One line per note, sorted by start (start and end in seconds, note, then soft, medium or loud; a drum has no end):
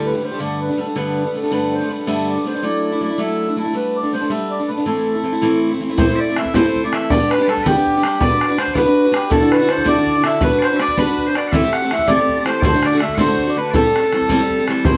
0.00 0.13 D2 medium
0.00 0.14 A2 medium
0.00 0.13 D3 medium
0.00 0.13 G3 medium
0.00 0.12 A3 medium
0.00 0.11 G4 medium
0.06 0.23 B4 medium
0.12 0.21 D3 soft
0.12 0.21 G3 soft
0.12 0.22 A3 soft
0.12 0.22 G4 soft
0.22 0.31 D3 medium
0.22 0.31 G3 medium
0.22 0.31 A3 medium
0.22 0.30 G4 medium
0.22 0.40 C5 medium
0.31 0.38 D3 soft
0.31 0.39 G3 soft
0.31 0.39 A3 medium
0.31 0.40 G4 soft
0.39 0.69 G2 medium
0.39 0.69 D3 medium
0.39 0.69 G3 medium
0.39 0.69 A3 medium
0.39 0.70 B3 medium
0.39 0.68 D4 medium
0.39 0.60 D5 medium
0.61 0.79 B4 medium
0.69 0.76 G3 soft
0.69 0.78 A3 soft
0.69 0.77 B3 soft
0.69 0.78 D4 soft
0.77 0.87 G3 soft
0.77 0.86 A3 medium
0.77 0.87 B3 medium
0.77 0.85 D4 soft
0.77 0.97 A4 medium
0.87 0.94 G3 soft
0.87 0.95 A3 soft
0.87 0.95 B3 soft
0.87 0.95 D4 soft
0.95 1.25 G2 medium
0.95 1.25 D3 medium
0.95 1.25 G3 medium
0.95 1.24 A3 medium
0.95 1.25 B3 medium
0.95 1.23 D4 medium
0.95 1.36 B4 medium
1.24 1.32 G3 soft
1.24 1.34 A3 soft
1.24 1.33 B3 soft
1.24 1.33 D4 soft
1.33 1.43 G3 soft
1.33 1.42 A3 medium
1.33 1.43 B3 soft
1.33 1.41 D4 soft
1.33 1.51 A4 medium
1.42 1.50 G3 soft
1.42 1.51 A3 soft
1.42 1.50 B3 soft
1.42 1.51 D4 medium
1.50 1.81 G2 medium
1.50 1.81 D3 medium
1.50 1.81 G3 medium
1.50 1.80 A3 medium
1.50 1.80 B3 medium
1.50 1.79 D4 medium
1.50 1.74 B4 medium
1.74 1.91 C5 medium
1.80 1.87 G3 soft
1.80 1.88 A3 medium
1.80 1.88 B3 soft
1.80 1.90 D4 soft
1.88 1.98 G3 medium
1.88 1.97 A3 medium
1.88 1.98 B3 soft
1.88 1.96 D4 medium
1.88 2.08 B4 medium
1.97 2.06 G3 soft
1.97 2.07 A3 soft
1.97 2.06 B3 soft
1.97 2.07 D4 soft
2.06 2.36 G2 medium
2.06 2.37 D3 medium
2.06 2.37 G3 medium
2.06 2.36 A3 medium
2.06 2.36 B3 medium
2.06 2.34 D4 medium
2.06 2.27 E5 medium
2.29 2.47 D5 medium
2.36 2.43 G3 soft
2.36 2.45 A3 soft
2.36 2.45 B3 soft
2.36 2.45 D4 soft
2.45 2.54 G3 medium
2.45 2.54 A3 medium
2.45 2.54 B3 medium
2.45 2.53 D4 medium
2.45 2.64 C5 medium
2.54 2.62 G3 soft
2.54 2.62 A3 soft
2.54 2.63 B3 soft
2.54 2.63 D4 medium
2.62 2.93 F#3 medium
2.62 2.93 A3 medium
2.62 2.92 D4 medium
2.62 2.91 E4 medium
2.62 3.01 D5 medium
2.92 3.01 A3 soft
2.92 3.02 D4 soft
2.92 3.01 E4 soft
3.01 3.10 F#3 soft
3.01 3.11 A3 medium
3.01 3.09 D4 medium
3.01 3.09 E4 medium
3.01 3.20 D5 medium
3.10 3.17 A3 soft
3.10 3.18 D4 soft
3.10 3.18 E4 soft
3.18 3.48 F#3 medium
3.18 3.48 A3 medium
3.18 3.47 D4 medium
3.18 3.46 E4 medium
3.18 3.55 E5 loud
3.47 3.56 A3 soft
3.47 3.57 D4 soft
3.47 3.57 E4 soft
3.56 3.66 F#3 medium
3.56 3.65 A3 medium
3.56 3.64 D4 medium
3.56 3.63 E4 medium
3.56 3.76 A4 medium
3.64 3.73 A3 soft
3.64 3.74 D4 soft
3.64 3.74 E4 medium
3.73 4.04 G3 medium
3.73 4.04 A3 medium
3.73 4.03 B3 medium
3.73 4.02 D4 medium
3.73 3.97 B4 medium
3.96 4.12 D5 medium
4.03 4.12 A3 soft
4.03 4.13 B3 soft
4.03 4.13 D4 soft
4.13 4.22 G3 medium
4.13 4.22 A3 medium
4.13 4.21 B3 medium
4.13 4.20 D4 medium
4.13 4.31 C5 medium
4.21 4.29 A3 soft
4.21 4.30 B3 soft
4.21 4.30 D4 soft
4.30 4.60 G3 medium
4.30 4.60 A3 medium
4.30 4.59 B3 medium
4.30 4.58 D4 medium
4.30 4.52 E5 medium
4.51 4.69 D5 medium
4.59 4.68 A3 soft
4.59 4.69 B3 soft
4.59 4.69 D4 soft
4.68 4.78 G3 soft
4.68 4.78 A3 soft
4.68 4.78 B3 soft
4.68 4.76 D4 medium
4.68 4.87 B4 medium
4.77 4.85 A3 soft
4.77 4.86 B3 soft
4.77 4.86 D4 soft
4.86 5.16 A2 medium
4.86 5.16 E3 medium
4.86 5.15 A3 medium
4.86 5.16 C4 medium
4.86 5.14 E4 medium
4.86 5.59 A4 medium
5.15 5.24 A3 soft
5.15 5.23 C4 soft
5.15 5.24 E4 soft
5.23 5.33 E3 soft
5.23 5.32 A3 medium
5.23 5.33 C4 medium
5.23 5.31 E4 medium
5.33 5.42 A3 soft
5.33 5.41 C4 soft
5.33 5.42 E4 medium
5.41 5.71 A2 medium
5.41 5.72 E3 medium
5.41 5.71 A3 loud
5.41 5.72 C4 medium
5.41 5.70 E4 medium
5.71 5.80 A3 soft
5.71 5.79 C4 soft
5.71 5.80 E4 medium
5.80 5.89 E3 medium
5.80 5.89 A3 medium
5.80 5.89 C4 medium
5.80 5.88 E4 medium
5.89 5.97 A3 medium
5.89 5.97 C4 soft
5.89 5.98 E4 medium
5.97 6.08 A2 medium
5.97 6.08 E3 medium
5.97 6.08 A3 medium
5.97 6.09 C4 medium
5.97 6.07 E4 medium
5.97 6.19 C5 loud
5.97 6.16 C5 medium
5.97 bodhran loud
6.09 6.28 A3 soft
6.09 6.29 C4 soft
6.09 6.28 E4 medium
6.16 6.20 E5 medium
6.20 6.37 D5 loud
6.20 6.38 D5 medium
6.29 6.38 A3 medium
6.29 6.37 C4 soft
6.29 6.37 E4 medium
6.36 6.54 E3 medium
6.36 6.55 A3 medium
6.36 6.54 C4 medium
6.36 6.55 E4 medium
6.36 6.53 E5 medium
6.36 6.56 E5 medium
6.36 bodhran medium
6.45 bodhran soft
6.54 6.65 A2 loud
6.54 6.65 E3 loud
6.54 6.65 A3 medium
6.54 6.65 C4 medium
6.54 6.64 E4 medium
6.54 6.81 C5 loud
6.54 6.84 C5 medium
6.54 bodhran medium
6.65 6.84 A3 medium
6.65 6.85 C4 soft
6.65 6.83 E4 medium
6.75 bodhran soft
6.84 6.93 A3 medium
6.84 6.92 C4 soft
6.84 6.92 E4 medium
6.84 6.94 D5 medium
6.84 6.93 D5 medium
6.93 7.10 E3 medium
6.93 7.11 A3 medium
6.93 7.10 C4 medium
6.93 7.11 E4 medium
6.93 7.11 E5 loud
6.93 7.11 E5 medium
6.93 bodhran medium
7.10 7.20 G3 loud
7.10 7.21 B3 medium
7.10 7.20 D4 loud
7.10 7.19 G4 medium
7.10 7.31 D5 loud
7.10 7.31 D5 medium
7.10 bodhran loud
7.20 7.40 B3 soft
7.20 7.39 D4 medium
7.20 7.37 G4 medium
7.31 7.48 B4 loud
7.31 7.42 B4 medium
7.31 bodhran medium
7.38 7.47 B3 soft
7.38 7.48 D4 medium
7.38 7.47 G4 medium
7.38 7.46 D5 soft
7.46 7.64 G3 medium
7.46 7.65 B3 medium
7.46 7.65 D4 medium
7.46 7.63 A4 medium
7.46 7.66 A4 loud
7.46 7.48 B4 soft
7.46 bodhran medium
7.50 7.66 G4 medium
7.57 bodhran soft
7.63 7.75 G3 medium
7.63 7.76 B3 loud
7.63 7.75 D4 loud
7.63 8.23 G4 loud
7.63 8.23 G4 medium
7.63 7.74 G4 medium
7.63 7.66 B4 medium
7.63 bodhran medium
7.75 7.96 B3 medium
7.75 7.95 D4 medium
7.75 7.94 G4 medium
7.87 bodhran soft
7.95 8.03 B3 soft
7.95 8.04 D4 soft
7.95 8.03 G4 medium
8.03 8.20 G3 soft
8.03 8.19 B3 medium
8.03 8.19 D4 medium
8.03 8.21 G4 medium
8.03 bodhran medium
8.20 8.31 B3 medium
8.20 8.31 D4 medium
8.20 8.30 F#4 medium
8.20 8.29 B4 medium
8.20 8.56 D5 loud
8.20 8.61 D5 medium
8.20 bodhran loud
8.30 8.50 D4 soft
8.30 8.49 F#4 soft
8.30 8.47 B4 medium
8.41 bodhran medium
8.49 8.57 D4 medium
8.49 8.58 F#4 medium
8.49 8.58 B4 medium
8.58 8.74 B3 medium
8.58 8.75 D4 medium
8.58 8.75 F#4 medium
8.58 8.76 B4 medium
8.58 8.75 C5 medium
8.58 8.74 C5 medium
8.58 bodhran medium
8.67 bodhran soft
8.74 8.86 B3 medium
8.74 8.86 D4 medium
8.74 8.85 F#4 loud
8.74 9.16 B4 loud
8.74 8.84 B4 loud
8.74 9.32 B4 medium
8.74 8.77 D5 medium
8.74 bodhran medium
8.85 9.06 D4 medium
8.85 9.05 F#4 medium
8.85 9.04 B4 medium
9.05 9.12 D4 soft
9.05 9.12 F#4 medium
9.05 9.13 B4 soft
9.12 9.30 B3 medium
9.12 9.30 D4 medium
9.12 9.30 F#4 medium
9.12 9.32 G4 medium
9.12 9.31 B4 medium
9.12 bodhran medium
9.30 9.41 D2 medium
9.30 9.41 A2 medium
9.30 9.41 D3 medium
9.30 9.41 D4 medium
9.30 9.40 E4 medium
9.30 9.39 F#4 medium
9.30 9.52 A4 loud
9.30 9.87 A4 medium
9.30 bodhran medium
9.40 9.61 D3 soft
9.40 9.61 D4 medium
9.40 9.59 E4 medium
9.40 9.58 F#4 medium
9.51 9.70 B4 loud
9.51 bodhran medium
9.59 9.66 D3 soft
9.59 9.67 D4 soft
9.59 9.68 E4 soft
9.59 9.69 F#4 medium
9.68 9.84 D3 medium
9.68 9.84 D4 medium
9.68 9.84 E4 medium
9.68 9.85 F#4 medium
9.68 9.88 C5 loud
9.68 bodhran medium
9.78 bodhran soft
9.84 9.96 D2 medium
9.84 9.96 A2 medium
9.84 9.96 D3 medium
9.84 9.96 D4 medium
9.84 9.96 E4 medium
9.84 9.95 F#4 loud
9.84 10.25 D5 medium
9.84 10.27 D5 loud
9.84 bodhran medium
9.96 10.16 D3 medium
9.96 10.15 D4 medium
9.96 10.15 E4 medium
9.96 10.13 F#4 medium
10.07 bodhran soft
10.15 10.22 D3 soft
10.15 10.23 D4 soft
10.15 10.23 E4 soft
10.15 10.24 F#4 soft
10.23 10.40 D3 medium
10.23 10.40 D4 medium
10.23 10.41 E4 medium
10.23 10.40 F#4 medium
10.23 10.42 E5 medium
10.23 10.44 E5 loud
10.23 bodhran medium
10.41 10.52 B3 medium
10.41 10.52 D4 medium
10.41 10.52 F#4 medium
10.41 10.51 B4 medium
10.41 10.59 B4 medium
10.41 10.64 B4 loud
10.41 bodhran medium
10.52 10.72 D4 soft
10.52 10.70 F#4 medium
10.52 10.69 B4 medium
10.59 10.63 D5 medium
10.59 bodhran medium
10.63 10.76 C5 medium
10.63 10.81 C5 loud
10.70 10.79 D4 soft
10.70 10.80 F#4 medium
10.70 10.80 B4 medium
10.76 10.96 B3 medium
10.76 10.97 D4 medium
10.76 10.81 E5 medium
10.76 bodhran medium
10.81 10.97 F#4 medium
10.81 10.98 B4 medium
10.81 10.98 D5 medium
10.81 10.99 D5 loud
10.88 bodhran soft
10.97 11.08 B3 medium
10.97 11.08 D4 loud
10.97 11.07 F#4 medium
10.97 11.28 B4 loud
10.97 11.26 B4 medium
10.97 11.06 B4 loud
10.97 bodhran medium
11.07 11.28 D4 soft
11.07 11.26 F#4 medium
11.07 11.25 B4 medium
11.18 bodhran soft
11.26 11.34 D4 soft
11.26 11.35 F#4 soft
11.26 11.35 B4 medium
11.26 11.36 C5 medium
11.35 11.53 B3 medium
11.35 11.53 F#4 medium
11.35 11.54 B4 medium
11.35 11.48 D5 medium
11.35 11.54 D5 loud
11.35 bodhran medium
11.48 11.52 F#5 medium
11.52 11.63 A2 medium
11.52 11.63 E3 medium
11.52 11.63 A3 medium
11.52 11.64 C4 medium
11.52 11.62 G4 medium
11.52 11.73 E5 medium
11.52 11.73 E5 loud
11.52 bodhran medium
11.63 11.82 A3 medium
11.63 11.83 C4 soft
11.63 11.81 G4 medium
11.73 12.08 F#5 loud
11.73 11.92 F#5 loud
11.73 bodhran medium
11.82 11.91 A3 medium
11.82 11.90 C4 medium
11.82 11.91 G4 medium
11.91 12.06 E3 medium
11.91 12.08 A3 medium
11.91 12.07 C4 medium
11.91 12.08 G4 medium
11.91 12.10 E5 loud
11.91 bodhran medium
11.99 bodhran soft
12.07 12.18 A2 medium
12.07 12.18 E3 loud
12.07 12.19 A3 loud
12.07 12.19 C4 medium
12.07 12.18 G4 loud
12.07 12.43 D5 loud
12.07 12.46 D5 medium
12.07 bodhran medium
12.19 12.37 A3 medium
12.19 12.38 C4 soft
12.19 12.36 G4 medium
12.29 bodhran soft
12.37 12.46 A3 soft
12.37 12.45 C4 soft
12.37 12.46 G4 soft
12.45 12.63 E3 medium
12.45 12.63 A3 medium
12.45 12.64 C4 medium
12.45 12.64 G4 medium
12.45 12.60 C5 medium
12.45 12.63 C5 medium
12.45 bodhran medium
12.60 12.74 D2 medium
12.60 12.74 A2 medium
12.60 12.74 D3 loud
12.60 12.85 C5 medium
12.60 12.64 D5 medium
12.60 bodhran loud
12.64 12.74 A3 medium
12.64 12.73 D4 medium
12.64 12.72 F#4 loud
12.64 12.85 C5 loud
12.73 12.93 D3 soft
12.73 12.93 A3 soft
12.73 12.92 D4 medium
12.73 12.91 F#4 medium
12.83 12.98 D5 medium
12.83 13.03 D5 medium
12.83 bodhran medium
12.92 12.99 D3 soft
12.92 13.00 A3 soft
12.92 13.01 D4 medium
12.92 13.01 F#4 medium
12.98 13.17 D3 medium
12.98 13.17 A3 medium
12.98 13.18 D4 medium
12.98 13.15 E5 medium
12.98 13.20 E5 loud
12.98 13.02 F#5 medium
12.98 bodhran medium
13.03 13.18 F#4 medium
13.09 bodhran soft
13.15 13.29 D2 medium
13.15 13.29 A2 medium
13.15 13.29 D3 medium
13.15 13.28 A3 loud
13.15 13.28 D4 loud
13.15 13.27 F#4 loud
13.15 13.58 C5 medium
13.15 13.19 F#5 medium
13.15 bodhran medium
13.19 13.50 C5 loud
13.28 13.49 D3 soft
13.28 13.47 A3 medium
13.28 13.47 D4 medium
13.28 13.46 F#4 medium
13.39 bodhran soft
13.47 13.54 D3 soft
13.47 13.55 A3 soft
13.47 13.56 D4 soft
13.47 13.56 F#4 medium
13.47 13.58 D5 medium
13.55 13.73 D3 medium
13.55 13.73 A3 soft
13.55 13.74 D4 medium
13.55 13.75 F#4 medium
13.55 13.75 B4 medium
13.55 13.70 B4 medium
13.70 13.84 A2 medium
13.70 13.85 E3 medium
13.70 13.84 G3 medium
13.70 14.64 A4 loud
13.70 13.75 D5 medium
13.70 bodhran medium
13.75 13.84 C4 medium
13.75 13.82 G4 loud
13.75 14.85 A4 medium
13.84 14.04 G3 soft
13.84 14.03 C4 soft
13.84 14.02 G4 medium
13.96 bodhran medium
14.03 14.12 G3 soft
14.03 14.13 C4 soft
14.03 14.12 G4 medium
14.12 14.28 E3 medium
14.12 14.29 G3 medium
14.12 14.29 C4 medium
14.12 14.30 G4 medium
14.12 bodhran soft
14.21 bodhran soft
14.29 14.40 A2 loud
14.29 14.40 E3 medium
14.29 14.40 G3 loud
14.29 14.40 C4 loud
14.29 14.39 G4 loud
14.29 bodhran medium
14.40 14.60 G3 medium
14.40 14.58 C4 medium
14.40 14.57 G4 medium
14.50 bodhran soft
14.58 14.68 G3 soft
14.58 14.68 C4 medium
14.58 14.67 G4 medium
14.68 14.84 E3 medium
14.68 14.86 G3 medium
14.68 14.85 C4 medium
14.68 14.86 G4 medium
14.68 bodhran medium
14.84 14.95 A2 medium
14.84 14.96 E3 medium
14.84 14.96 A3 medium
14.84 14.96 C4 medium
14.84 14.95 E4 medium
14.84 14.97 C5 medium
14.84 bodhran loud